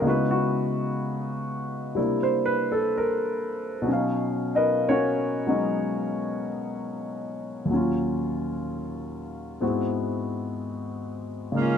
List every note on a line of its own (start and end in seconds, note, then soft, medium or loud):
0.02 1.96 C#3 soft
0.02 1.96 G#3 soft
0.02 1.96 B3 soft
0.02 1.97 D#4 soft
0.06 1.95 E4 soft
0.06 0.29 F#4 soft
0.06 0.39 B4 medium
0.31 0.52 F#4 medium
1.95 3.87 C3 soft
1.95 3.87 G3 soft
1.95 3.88 A#3 soft
1.95 3.88 D4 soft
1.95 3.88 E4 soft
2.23 2.58 C5 medium
2.46 2.69 B4 medium
2.72 2.90 A4 medium
2.98 3.87 A#4 medium
3.82 7.67 B2 soft
3.82 5.45 F#3 soft
3.88 4.88 C#4 soft
3.88 4.54 D#4 soft
3.93 7.72 F5 soft
4.55 4.85 D#4 medium
4.55 4.85 A#4 medium
4.55 4.85 B4 medium
4.55 4.85 D#5 medium
4.88 5.47 C#4 medium
4.88 5.50 F#4 medium
4.88 5.49 A#4 medium
4.88 5.49 C#5 medium
5.47 7.69 F#3 soft
5.47 7.70 G#3 soft
5.47 7.70 B3 soft
5.47 7.70 C#4 soft
5.47 7.71 D#4 soft
7.65 9.60 D#2 soft
7.65 9.61 A#2 soft
7.70 9.62 F#3 soft
7.70 9.64 C#4 soft
7.76 9.65 F4 soft
9.61 11.55 G#2 soft
9.61 11.53 G#3 soft
9.61 11.55 B3 soft
9.61 11.55 C4 soft
9.61 11.56 E4 soft
9.61 11.56 F#4 soft
11.52 11.78 C#3 soft
11.52 11.78 G#3 soft
11.52 11.78 A#3 soft
11.52 11.78 D#4 soft
11.56 11.78 D#3 medium
11.56 11.78 A#3 medium
11.56 11.78 C#4 medium
11.56 11.78 F4 medium
11.56 11.78 F4 soft